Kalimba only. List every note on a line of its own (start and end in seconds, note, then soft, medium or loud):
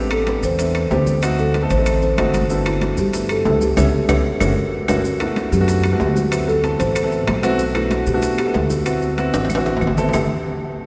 0.00 0.11 B4 loud
0.13 0.27 A4 medium
0.29 0.36 B4 medium
0.45 0.91 C5 medium
0.92 1.06 C5 medium
1.24 1.40 B4 medium
1.40 1.46 A4 medium
1.55 1.71 B4 medium
1.71 2.02 C5 medium
2.03 2.10 C5 medium
2.19 2.34 C5 medium
2.51 2.67 F#4 medium
2.68 2.82 E4 medium
2.83 2.90 F#4 medium
2.99 3.28 G4 medium
3.31 3.45 A4 medium
3.47 3.63 A4 medium
3.63 3.77 G4 medium
3.78 3.88 G4 medium
3.78 3.88 B4 medium
3.78 3.88 C#5 loud
4.09 4.20 G4 medium
4.09 4.20 B4 medium
4.09 4.19 C#5 medium
4.41 4.51 F#4 medium
4.41 4.51 A#4 medium
4.41 4.51 C#5 medium
4.89 4.99 F#4 medium
4.89 4.99 A#4 medium
4.89 4.99 C#5 loud
5.05 5.20 F#4 medium
5.21 5.37 E4 medium
5.37 5.44 F#4 medium
5.53 5.99 G4 medium
6.01 6.08 G4 medium
6.17 6.46 F#4 medium
6.48 6.77 A4 medium
6.80 7.39 C5 medium
7.59 7.73 F#4 medium
7.75 7.90 E4 medium
7.91 8.06 F#4 medium
8.07 8.36 G4 medium
8.39 8.55 G4 medium
8.54 8.70 B4 medium
8.70 9.78 F#4 medium
10.14 10.29 G4 medium